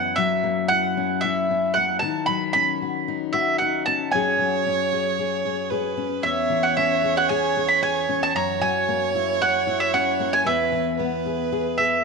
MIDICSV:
0, 0, Header, 1, 4, 480
1, 0, Start_track
1, 0, Tempo, 528169
1, 1836, Time_signature, 4, 2, 24, 8
1, 10943, End_track
2, 0, Start_track
2, 0, Title_t, "Mandolin"
2, 0, Program_c, 0, 25
2, 0, Note_on_c, 0, 78, 83
2, 143, Note_on_c, 0, 76, 83
2, 156, Note_off_c, 0, 78, 0
2, 622, Note_on_c, 0, 78, 89
2, 644, Note_off_c, 0, 76, 0
2, 1098, Note_on_c, 0, 76, 80
2, 1124, Note_off_c, 0, 78, 0
2, 1580, Note_on_c, 0, 78, 81
2, 1602, Note_off_c, 0, 76, 0
2, 1808, Note_off_c, 0, 78, 0
2, 1811, Note_on_c, 0, 81, 78
2, 2050, Note_off_c, 0, 81, 0
2, 2054, Note_on_c, 0, 83, 82
2, 2289, Note_off_c, 0, 83, 0
2, 2300, Note_on_c, 0, 83, 92
2, 3019, Note_off_c, 0, 83, 0
2, 3022, Note_on_c, 0, 76, 78
2, 3252, Note_off_c, 0, 76, 0
2, 3258, Note_on_c, 0, 78, 75
2, 3501, Note_off_c, 0, 78, 0
2, 3505, Note_on_c, 0, 81, 86
2, 3736, Note_off_c, 0, 81, 0
2, 3740, Note_on_c, 0, 80, 77
2, 5664, Note_on_c, 0, 76, 74
2, 5725, Note_off_c, 0, 80, 0
2, 6026, Note_on_c, 0, 78, 69
2, 6041, Note_off_c, 0, 76, 0
2, 6146, Note_off_c, 0, 78, 0
2, 6150, Note_on_c, 0, 76, 71
2, 6515, Note_off_c, 0, 76, 0
2, 6518, Note_on_c, 0, 78, 78
2, 6623, Note_off_c, 0, 78, 0
2, 6627, Note_on_c, 0, 80, 82
2, 6981, Note_off_c, 0, 80, 0
2, 6984, Note_on_c, 0, 83, 82
2, 7110, Note_off_c, 0, 83, 0
2, 7114, Note_on_c, 0, 80, 81
2, 7449, Note_off_c, 0, 80, 0
2, 7478, Note_on_c, 0, 81, 81
2, 7592, Note_off_c, 0, 81, 0
2, 7595, Note_on_c, 0, 82, 83
2, 7826, Note_off_c, 0, 82, 0
2, 7829, Note_on_c, 0, 80, 75
2, 8278, Note_off_c, 0, 80, 0
2, 8558, Note_on_c, 0, 78, 88
2, 8903, Note_off_c, 0, 78, 0
2, 8906, Note_on_c, 0, 76, 81
2, 9028, Note_off_c, 0, 76, 0
2, 9032, Note_on_c, 0, 78, 84
2, 9385, Note_off_c, 0, 78, 0
2, 9388, Note_on_c, 0, 80, 87
2, 9511, Note_on_c, 0, 76, 72
2, 9514, Note_off_c, 0, 80, 0
2, 10692, Note_off_c, 0, 76, 0
2, 10703, Note_on_c, 0, 76, 69
2, 10943, Note_off_c, 0, 76, 0
2, 10943, End_track
3, 0, Start_track
3, 0, Title_t, "Fiddle"
3, 0, Program_c, 1, 110
3, 3743, Note_on_c, 1, 73, 107
3, 5187, Note_on_c, 1, 71, 86
3, 5200, Note_off_c, 1, 73, 0
3, 5658, Note_on_c, 1, 73, 109
3, 5671, Note_off_c, 1, 71, 0
3, 7586, Note_off_c, 1, 73, 0
3, 7590, Note_on_c, 1, 73, 108
3, 9474, Note_off_c, 1, 73, 0
3, 9508, Note_on_c, 1, 71, 90
3, 9956, Note_off_c, 1, 71, 0
3, 9970, Note_on_c, 1, 71, 83
3, 10904, Note_off_c, 1, 71, 0
3, 10943, End_track
4, 0, Start_track
4, 0, Title_t, "Steel-string acoustic guitar"
4, 0, Program_c, 2, 25
4, 0, Note_on_c, 2, 42, 64
4, 0, Note_on_c, 2, 52, 60
4, 0, Note_on_c, 2, 61, 57
4, 0, Note_on_c, 2, 64, 63
4, 152, Note_off_c, 2, 52, 0
4, 162, Note_on_c, 2, 54, 66
4, 396, Note_on_c, 2, 58, 58
4, 633, Note_off_c, 2, 64, 0
4, 644, Note_on_c, 2, 64, 54
4, 880, Note_off_c, 2, 61, 0
4, 884, Note_on_c, 2, 61, 59
4, 1120, Note_off_c, 2, 64, 0
4, 1130, Note_on_c, 2, 64, 62
4, 1366, Note_off_c, 2, 61, 0
4, 1370, Note_on_c, 2, 61, 58
4, 1596, Note_off_c, 2, 58, 0
4, 1610, Note_on_c, 2, 58, 52
4, 1808, Note_off_c, 2, 42, 0
4, 1814, Note_off_c, 2, 58, 0
4, 1839, Note_on_c, 2, 51, 69
4, 1843, Note_off_c, 2, 64, 0
4, 1866, Note_off_c, 2, 61, 0
4, 2069, Note_off_c, 2, 54, 0
4, 2072, Note_on_c, 2, 54, 61
4, 2319, Note_on_c, 2, 61, 55
4, 2563, Note_on_c, 2, 66, 53
4, 2801, Note_on_c, 2, 63, 59
4, 3022, Note_off_c, 2, 66, 0
4, 3033, Note_on_c, 2, 66, 59
4, 3278, Note_off_c, 2, 63, 0
4, 3287, Note_on_c, 2, 63, 51
4, 3517, Note_off_c, 2, 61, 0
4, 3521, Note_on_c, 2, 61, 51
4, 3725, Note_off_c, 2, 54, 0
4, 3726, Note_off_c, 2, 66, 0
4, 3729, Note_off_c, 2, 51, 0
4, 3733, Note_off_c, 2, 63, 0
4, 3755, Note_on_c, 2, 42, 62
4, 3766, Note_off_c, 2, 61, 0
4, 3766, Note_on_c, 2, 54, 55
4, 3770, Note_on_c, 2, 61, 59
4, 3776, Note_on_c, 2, 68, 67
4, 3979, Note_off_c, 2, 54, 0
4, 3990, Note_on_c, 2, 54, 59
4, 4238, Note_off_c, 2, 61, 0
4, 4241, Note_on_c, 2, 61, 60
4, 4473, Note_off_c, 2, 68, 0
4, 4476, Note_on_c, 2, 68, 58
4, 4712, Note_off_c, 2, 68, 0
4, 4716, Note_on_c, 2, 68, 62
4, 4944, Note_off_c, 2, 68, 0
4, 4954, Note_on_c, 2, 68, 59
4, 5184, Note_off_c, 2, 68, 0
4, 5195, Note_on_c, 2, 68, 63
4, 5425, Note_off_c, 2, 61, 0
4, 5429, Note_on_c, 2, 61, 51
4, 5644, Note_off_c, 2, 54, 0
4, 5646, Note_off_c, 2, 68, 0
4, 5647, Note_off_c, 2, 42, 0
4, 5665, Note_on_c, 2, 40, 72
4, 5906, Note_on_c, 2, 52, 63
4, 6151, Note_off_c, 2, 61, 0
4, 6155, Note_on_c, 2, 61, 61
4, 6396, Note_on_c, 2, 68, 59
4, 6627, Note_off_c, 2, 68, 0
4, 6638, Note_on_c, 2, 68, 67
4, 6868, Note_off_c, 2, 68, 0
4, 6879, Note_on_c, 2, 68, 62
4, 7099, Note_off_c, 2, 68, 0
4, 7110, Note_on_c, 2, 68, 61
4, 7339, Note_off_c, 2, 61, 0
4, 7349, Note_on_c, 2, 61, 50
4, 7563, Note_off_c, 2, 61, 0
4, 7563, Note_off_c, 2, 68, 0
4, 7585, Note_off_c, 2, 40, 0
4, 7589, Note_on_c, 2, 42, 71
4, 7821, Note_off_c, 2, 52, 0
4, 7825, Note_on_c, 2, 54, 67
4, 8075, Note_on_c, 2, 58, 56
4, 8313, Note_on_c, 2, 64, 58
4, 8554, Note_on_c, 2, 61, 55
4, 8776, Note_off_c, 2, 64, 0
4, 8787, Note_on_c, 2, 64, 64
4, 9021, Note_off_c, 2, 61, 0
4, 9032, Note_on_c, 2, 61, 55
4, 9258, Note_off_c, 2, 58, 0
4, 9269, Note_on_c, 2, 58, 55
4, 9479, Note_off_c, 2, 54, 0
4, 9481, Note_off_c, 2, 42, 0
4, 9482, Note_off_c, 2, 58, 0
4, 9484, Note_off_c, 2, 61, 0
4, 9506, Note_on_c, 2, 40, 70
4, 9742, Note_on_c, 2, 52, 60
4, 9993, Note_on_c, 2, 59, 57
4, 10229, Note_off_c, 2, 64, 0
4, 10233, Note_on_c, 2, 68, 57
4, 10462, Note_off_c, 2, 68, 0
4, 10473, Note_on_c, 2, 68, 68
4, 10703, Note_off_c, 2, 68, 0
4, 10714, Note_on_c, 2, 68, 61
4, 10943, Note_off_c, 2, 40, 0
4, 10943, Note_off_c, 2, 52, 0
4, 10943, Note_off_c, 2, 59, 0
4, 10943, Note_off_c, 2, 68, 0
4, 10943, End_track
0, 0, End_of_file